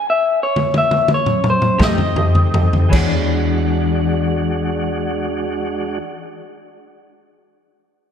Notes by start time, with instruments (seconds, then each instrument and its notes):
0.10 clean electric guitar E5
0.43 clean electric guitar C#5
0.56 mid tom
0.74 clean electric guitar E5, mid tom
0.91 mid tom
1.08 mid tom
1.14 clean electric guitar C#5
1.26 mid tom
1.44 mid tom
1.50 clean electric guitar C5
1.62 mid tom
1.78 upright bass F2, clean electric guitar F3 A3 D#4 G4, tonewheel organ A3 C4 D#4 G4, upright piano G4 A4 D#5, kick, snare, mid tom
1.83 clean electric guitar D#5
1.98 floor tom
2.16 upright piano G4 A4 D#5, floor tom
2.35 floor tom
2.53 upright piano G4 A4 D#5, floor tom
2.73 floor tom
2.88 clean electric guitar E3, tonewheel organ G#3 D4 F#4, upright piano G#4 C#5
2.93 upright bass E2, clean electric guitar D4 G#4, upright piano D5 F#5, kick, crash